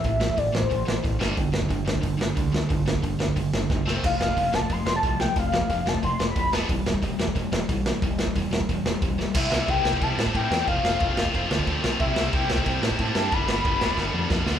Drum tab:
CC |----------------|----------------|----------------|x---------------|
RD |----------------|----------------|----------------|----------------|
HH |o---o---o---o---|o---o---o---o---|o---o---o-------|o---o---o---o---|
SD |--o---o---o---o-|--o---o---o---o-|--o---o---o-o-o-|--o---o---o---o-|
BD |o--oo--oo---o---|o--oo--oo---o---|o--oo--oo---o---|o--oo--oo---o---|

CC |----------------|----------------|----------------|x---------------|
RD |----------------|----------------|----------------|----x---x---x---|
HH |o---o---o---o---|o---o---o---o---|o---o---o---o---|----------------|
SD |--o---o---o---o-|--o---o---o---o-|--o---o---o---o-|--o---o---o---o-|
BD |o--oo--oo---o---|o--oo--oo---o---|o--oo--oo---o---|o---o--oo--oo---|

CC |----------------|----------------|----------------|
RD |x---x---x---x---|x---x---x---x---|x---x-----------|
HH |----------------|----------------|----------------|
SD |--o---o---o---o-|--o---o---o---o-|--o---o-o---o-o-|
BD |o---o--oo--oo---|o---o--oo--oo---|o---o--oo---o---|